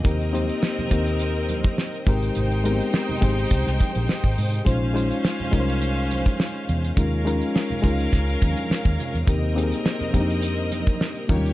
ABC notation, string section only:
X:1
M:4/4
L:1/8
Q:"Swing 16ths" 1/4=104
K:Cphr
V:1 name="String section"
[CBe]6- [CBe] [Ecg]- | [Ecg]8 | [Dcf]8 | [DBf]8 |
[CBe]6- [CBe] [B,Gd] |]